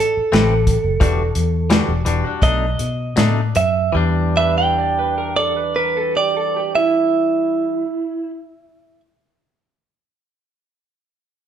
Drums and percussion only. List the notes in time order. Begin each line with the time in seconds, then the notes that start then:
0.00 closed hi-hat
0.33 snare, closed hi-hat
0.67 kick, closed hi-hat
1.01 kick, closed hi-hat
1.35 closed hi-hat
1.70 snare, closed hi-hat
2.06 closed hi-hat
2.42 kick, closed hi-hat
2.79 closed hi-hat
3.17 snare, closed hi-hat
3.55 closed hi-hat